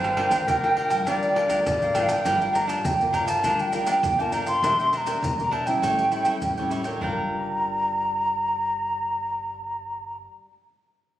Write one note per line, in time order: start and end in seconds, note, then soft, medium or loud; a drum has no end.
0.00 0.26 G1 loud
0.00 0.45 G3 medium
0.00 0.16 D4 medium
0.00 0.17 A#4 medium
0.00 0.49 C5 medium
0.00 0.17 F5 medium
0.00 0.17 G5 medium
0.00 1.62 G5 medium
0.04 pandeiro soft
0.04 tamborim medium
0.04 maracas soft
0.17 0.30 D4 medium
0.17 0.46 D4 soft
0.17 0.46 F4 soft
0.17 0.30 A#4 medium
0.17 0.46 A#4 medium
0.17 0.30 F5 medium
0.17 0.31 G5 medium
0.17 pandeiro medium
0.17 tamborim medium
0.31 0.44 D2 loud
0.31 0.41 D4 medium
0.31 0.41 A#4 medium
0.31 0.41 F5 medium
0.31 0.41 G5 medium
0.31 pandeiro medium
0.31 maracas medium
0.47 0.86 D2 medium
0.47 1.04 D3 medium
0.47 0.74 D4 soft
0.47 1.09 A#4 medium
0.47 0.75 A#4 soft
0.47 0.76 F5 soft
0.47 0.76 G5 medium
0.47 pandeiro medium
0.47 maracas medium
0.47 surdo medium
0.63 1.03 D4 medium
0.63 1.03 F4 medium
0.63 1.03 A#4 medium
0.63 pandeiro soft
0.63 tamborim medium
0.63 maracas soft
0.76 0.90 D4 medium
0.76 0.90 A#4 medium
0.76 0.89 F5 medium
0.76 0.88 G5 medium
0.76 pandeiro medium
0.90 1.07 G2 medium
0.90 1.05 A#4 soft
0.90 1.05 F5 soft
0.90 1.05 G5 soft
0.90 pandeiro medium
0.90 tamborim medium
0.90 maracas medium
1.06 1.45 D2 medium
1.06 1.63 G3 medium
1.06 1.34 D4 medium
1.06 1.32 D4 medium
1.06 1.32 F4 medium
1.06 1.35 A#4 medium
1.06 1.32 A#4 medium
1.06 1.67 D5 loud
1.06 1.35 F5 medium
1.06 1.36 G5 medium
1.06 pandeiro medium
1.06 tamborim medium
1.06 maracas medium
1.06 surdo soft
1.23 pandeiro soft
1.23 maracas soft
1.35 1.48 D4 soft
1.35 1.74 D4 medium
1.35 1.75 F4 medium
1.35 1.75 A#4 medium
1.35 1.48 A#4 soft
1.35 1.49 F5 medium
1.35 1.49 G5 medium
1.35 pandeiro medium
1.35 tamborim medium
1.49 1.63 D2 medium
1.49 1.59 D4 medium
1.49 1.59 A#4 medium
1.49 1.60 F5 medium
1.49 1.60 G5 medium
1.49 pandeiro medium
1.49 maracas medium
1.66 1.93 A1 medium
1.66 2.23 D3 soft
1.66 2.22 D5 medium
1.66 pandeiro medium
1.66 tamborim medium
1.66 maracas medium
1.66 surdo medium
1.82 1.94 A#4 soft
1.82 1.95 F5 soft
1.82 1.95 G5 soft
1.82 pandeiro soft
1.82 maracas soft
1.94 2.22 G1 medium
1.94 2.09 D4 medium
1.94 2.15 D4 medium
1.94 2.15 F4 medium
1.94 2.09 A#4 medium
1.94 2.15 A#4 medium
1.94 2.08 F5 medium
1.94 2.05 G5 medium
1.94 2.07 G5 medium
1.94 pandeiro medium
1.94 tamborim medium
1.94 maracas medium
2.03 2.11 F5 medium
2.08 2.24 A#4 soft
2.08 2.24 F5 soft
2.08 2.23 G5 medium
2.08 2.54 G5 medium
2.08 pandeiro medium
2.08 tamborim medium
2.08 maracas medium
2.25 2.76 G1 medium
2.25 2.82 G3 soft
2.25 2.39 D4 medium
2.25 2.51 D4 soft
2.25 2.51 F4 soft
2.25 2.39 A#4 medium
2.25 2.51 A#4 medium
2.25 2.40 F5 medium
2.25 2.39 G5 medium
2.25 pandeiro medium
2.25 maracas medium
2.25 surdo medium
2.40 2.52 A#4 soft
2.40 2.53 F5 soft
2.40 2.53 G5 soft
2.40 pandeiro soft
2.40 maracas soft
2.53 2.66 D4 soft
2.53 2.95 D4 soft
2.53 2.95 F4 soft
2.53 2.67 A#4 soft
2.53 2.95 A#4 medium
2.53 2.67 F5 soft
2.53 2.68 G5 medium
2.53 2.70 A#5 medium
2.53 pandeiro medium
2.53 maracas medium
2.67 2.78 D4 medium
2.67 2.78 A#4 medium
2.67 2.78 F5 medium
2.67 2.79 G5 medium
2.67 2.87 A5 medium
2.67 pandeiro medium
2.67 maracas medium
2.84 3.35 G1 medium
2.84 3.41 D3 medium
2.84 3.16 G5 medium
2.84 pandeiro medium
2.84 maracas medium
2.84 surdo loud
3.01 3.41 D4 soft
3.01 3.41 F4 medium
3.01 3.41 A#4 medium
3.01 pandeiro soft
3.01 maracas soft
3.13 3.27 D4 medium
3.13 3.27 A#4 medium
3.13 3.26 F5 medium
3.13 3.25 G5 medium
3.13 3.29 A#5 medium
3.13 pandeiro medium
3.13 maracas medium
3.13 surdo medium
3.26 3.42 A#4 soft
3.26 3.42 F5 soft
3.26 3.42 G5 soft
3.26 3.62 A5 medium
3.26 pandeiro medium
3.26 maracas medium
3.43 3.70 D2 medium
3.43 4.01 G3 medium
3.43 3.71 D4 medium
3.43 3.70 D4 medium
3.43 3.70 F4 medium
3.43 3.72 A#4 medium
3.43 3.70 A#4 medium
3.43 3.72 F5 medium
3.43 3.73 G5 medium
3.43 pandeiro medium
3.43 maracas medium
3.43 surdo soft
3.59 3.87 G5 medium
3.59 pandeiro soft
3.59 maracas soft
3.72 3.86 D4 soft
3.72 4.14 D4 soft
3.72 4.14 F4 medium
3.72 3.86 A#4 soft
3.72 4.14 A#4 medium
3.72 3.86 F5 soft
3.72 3.87 G5 medium
3.72 pandeiro medium
3.72 maracas medium
3.87 3.97 D4 medium
3.87 3.97 A#4 medium
3.87 3.97 F5 medium
3.87 4.22 G5 medium
3.87 3.98 G5 medium
3.87 pandeiro medium
3.87 maracas medium
4.03 4.54 G1 medium
4.03 4.61 D3 soft
4.03 pandeiro medium
4.03 maracas medium
4.03 surdo medium
4.19 4.59 D4 medium
4.19 4.60 F4 medium
4.19 4.31 A#4 soft
4.19 4.60 A#4 medium
4.19 4.32 F5 soft
4.19 4.32 G5 soft
4.19 4.34 A5 medium
4.19 pandeiro soft
4.19 maracas soft
4.32 4.47 D4 medium
4.32 4.47 A#4 medium
4.32 4.45 F5 medium
4.32 4.45 G5 medium
4.32 4.40 A#5 medium
4.32 pandeiro soft
4.32 maracas medium
4.46 4.62 A#4 soft
4.46 4.61 F5 soft
4.46 4.61 G5 soft
4.46 4.93 C6 medium
4.46 pandeiro medium
4.46 maracas medium
4.62 5.14 E1 medium
4.62 5.20 E3 soft
4.62 4.77 D4 medium
4.62 4.91 D4 medium
4.62 4.92 G4 medium
4.62 4.77 A#4 medium
4.62 4.92 A#4 soft
4.62 4.78 E5 medium
4.62 4.78 G5 medium
4.62 pandeiro medium
4.62 maracas medium
4.62 surdo medium
4.79 4.92 A#4 soft
4.79 4.92 E5 soft
4.79 4.92 G5 soft
4.79 pandeiro soft
4.79 maracas soft
4.93 5.05 D4 soft
4.93 5.05 A#4 medium
4.93 5.06 E5 medium
4.93 5.06 G5 medium
4.93 4.98 C6 medium
4.93 pandeiro medium
4.93 maracas medium
4.97 5.54 A#5 medium
5.06 5.16 D4 medium
5.06 5.32 D4 medium
5.06 5.32 G4 medium
5.06 5.16 A#4 medium
5.06 5.33 A#4 medium
5.06 5.17 E5 medium
5.06 5.17 G5 medium
5.06 pandeiro medium
5.06 maracas medium
5.22 5.73 E1 medium
5.22 5.80 E3 medium
5.22 pandeiro medium
5.22 maracas medium
5.22 surdo medium
5.40 5.64 D4 soft
5.40 5.64 G4 medium
5.40 5.64 A#4 medium
5.40 pandeiro soft
5.40 maracas soft
5.51 5.66 D4 medium
5.51 5.66 A#4 medium
5.51 5.65 E5 medium
5.51 5.65 G5 medium
5.51 5.68 A5 medium
5.51 pandeiro medium
5.66 6.22 G3 medium
5.66 6.22 C#4 soft
5.66 6.22 E4 medium
5.66 5.81 A#4 soft
5.66 5.81 E5 soft
5.66 5.81 G5 soft
5.66 6.72 G5 medium
5.66 pandeiro medium
5.66 maracas medium
5.82 6.08 A1 medium
5.82 6.40 A2 medium
5.82 6.10 E4 medium
5.82 6.11 A4 medium
5.82 6.12 C#5 medium
5.82 6.12 G5 medium
5.82 pandeiro medium
5.82 maracas medium
5.82 surdo soft
5.99 pandeiro soft
5.99 maracas soft
6.11 6.25 E4 soft
6.11 6.25 A4 soft
6.11 6.25 C#5 soft
6.11 6.26 G5 soft
6.11 pandeiro soft
6.11 maracas medium
6.25 6.52 G3 medium
6.25 6.52 C#4 soft
6.25 6.35 E4 medium
6.25 6.52 E4 medium
6.25 6.36 A4 medium
6.25 6.36 C#5 medium
6.25 6.36 G5 medium
6.25 pandeiro medium
6.25 maracas medium
6.42 6.93 A1 medium
6.42 6.99 E3 soft
6.42 pandeiro medium
6.42 maracas medium
6.42 surdo medium
6.57 6.83 G3 medium
6.57 6.83 C#4 medium
6.57 6.84 E4 medium
6.57 6.70 A4 soft
6.57 6.70 C#5 soft
6.57 6.71 G5 soft
6.57 pandeiro soft
6.57 maracas soft
6.70 6.85 E4 medium
6.70 6.85 A4 medium
6.70 6.85 C#5 medium
6.70 6.84 G5 medium
6.70 pandeiro soft
6.70 maracas medium
6.84 7.02 D4 soft
6.84 7.07 F4 soft
6.84 7.00 A4 soft
6.84 7.11 A#4 soft
6.84 7.00 C#5 soft
6.84 7.00 G5 soft
6.84 pandeiro soft
6.84 maracas medium
6.97 10.47 G3 soft
6.97 10.51 D4 medium
7.02 10.26 G1 medium
7.02 10.53 D4 soft
7.02 10.52 A#4 medium
7.02 10.53 F5 medium
7.02 10.54 G5 medium
7.02 10.17 A#5 medium
7.02 surdo medium
7.08 10.58 F4 soft
7.12 10.62 A#4 medium